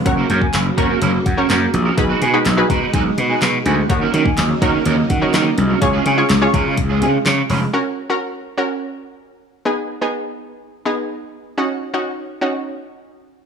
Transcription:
<<
  \new Staff \with { instrumentName = "Flute" } { \time 4/4 \key fis \major \tempo 4 = 125 fis''16 r8 gis''8 r16 ais''16 r8. fis''16 r4 r16 | r8 gis''16 r8. ais''16 r16 gis''16 r8 gis''16 r8 gis''16 r16 | fis''16 r8 gis''8 r16 ais''16 r8. fis''16 r4 r16 | r8 gis''16 r8. ais''16 r8. gis''16 r4 r16 |
r1 | r1 | r1 | }
  \new Staff \with { instrumentName = "Synth pluck" } { \time 4/4 \key fis \major <cis' fis' ais' cis''>4~ <cis' fis' ais' cis''>16 r16 <cis' fis' ais' cis''>4 r16 <cis' fis' ais' cis''>4 r16 | <dis' fis' gis' b'>8. <dis' fis' gis' b'>8 <dis' fis' gis' b'>4.~ <dis' fis' gis' b'>16 r4 | <dis' fis' ais' cis''>4~ <dis' fis' ais' cis''>16 r16 <dis' fis' ais' cis''>4 r16 <dis' fis' ais' cis''>4 r16 | <cis' eis' gis' cis''>8. <cis' eis' gis' cis''>8 <cis' eis' gis' cis''>4.~ <cis' eis' gis' cis''>16 r4 |
<cis' fis' ais'>8. <cis' fis' ais'>8. r16 <cis' fis' ais'>4.~ <cis' fis' ais'>16 r8 | <b dis' gis'>8. <b dis' gis'>4. r16 <b dis' gis'>4~ <b dis' gis'>16 r16 | <cis' dis' fis'>8. <cis' dis' fis'>8. r16 <cis' dis' fis'>4.~ <cis' dis' fis'>16 r8 | }
  \new Staff \with { instrumentName = "Clean electric guitar" } { \time 4/4 \key fis \major r16 <ais cis' fis' ais'>16 <ais cis' fis' ais'>16 r8. <ais cis' fis' ais'>16 <ais cis' fis' ais'>16 <ais cis' fis' ais'>8 r16 <ais cis' fis' ais'>16 <ais cis' fis' ais'>8 r16 <ais cis' fis' ais'>16 | r16 <gis dis' fis' b'>16 <gis dis' fis' b'>16 r8. <gis dis' fis' b'>16 <gis dis' fis' b'>16 <gis dis' fis' b'>8 r16 <gis dis' fis' b'>16 r8 <gis dis' fis' b'>8 | r16 <ais cis' fis' ais'>16 <ais cis' fis' ais'>16 r8. <ais cis' fis' ais'>16 <ais cis' fis' ais'>16 <ais cis' fis' ais'>8 r16 <ais cis' fis' ais'>16 <ais cis' fis' ais'>8 r16 <ais cis' fis' ais'>16 | r16 <gis cis' eis' gis'>16 <gis cis' eis' gis'>16 r8. <gis cis' eis' gis'>16 <gis cis' eis' gis'>16 r16 <gis cis' eis' gis'>16 <gis cis' eis' gis'>16 r8. <gis cis' eis' gis'>8 |
r1 | r1 | r1 | }
  \new Staff \with { instrumentName = "String machine" } { \clef bass \time 4/4 \key fis \major << { <ais fis'>1 | <gis dis'>1 | <fis dis'>1 | <gis eis'>1 |
r1 | r1 | r1 | } \\ { cis1 | b,1 | cis1~ | cis1 |
r1 | r1 | r1 | } >> }
  \new Staff \with { instrumentName = "Slap bass" } { \clef bass \time 4/4 \key fis \major fis,,8 fis,8 fis,,8 fis,8 fis,,8 fis,8 fis,8 ais,,8 | b,,8 b,8 b,,8 b,8 b,,8 b,8 b,8 d,8 | dis,8 dis8 dis,8 dis8 dis,8 dis8 dis8 bis,,8 | cis,8 cis8 cis,8 cis8 cis,8 cis8 cis8 eis,,8 |
r1 | r1 | r1 | }
  \new DrumStaff \with { instrumentName = "Drums" } \drummode { \time 4/4 <hh bd>8 hh16 bd16 <hc hh sn>8 <hh bd>8 hh8 <hh bd>8 <hc hh sn>8 hh8 | <hh bd>8 hh8 <hc hh sn>8 <hh bd>8 <hh bd>8 hh8 <hc hh sn>8 hh8 | <hh bd>8 hh16 bd16 <hc hh sn>8 <hh bd>8 hh8 <hh bd>8 <hc hh sn>8 hh8 | <hh bd>8 hh8 <hc hh sn>8 <hh bd>8 <hh bd>8 hh8 <hc hh sn>8 hho8 |
r4 r4 r4 r4 | r4 r4 r4 r4 | r4 r4 r4 r4 | }
>>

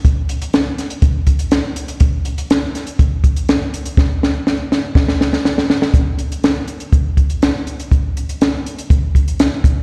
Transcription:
\new DrumStaff \with { instrumentName = "Drums" } \drummode { \time 4/4 \tempo 4 = 122 <hh bd>8 hh16 hh16 <hh sn>8 <hh sn>16 hh16 <hh bd>8 <hh bd>16 hh16 <hh sn>8 hh16 hh16 | <hh bd>8 hh16 hh16 <hh sn>8 <hh sn>16 hh16 <hh bd>8 <hh bd>16 hh16 <hh sn>8 hh16 hh16 | <bd sn>8 sn8 sn8 sn8 <bd sn>16 sn16 sn16 sn16 sn16 sn16 sn16 sn16 | <hh bd>8 hh16 hh16 <hh sn>8 hh16 hh16 <hh bd>8 <hh bd>16 hh16 <hh sn>8 hh16 hh16 |
<hh bd>8 hh16 hh16 <hh sn>8 hh16 hh16 <hh bd>8 <hh bd>16 hh16 <hh sn>8 <hh bd>8 | }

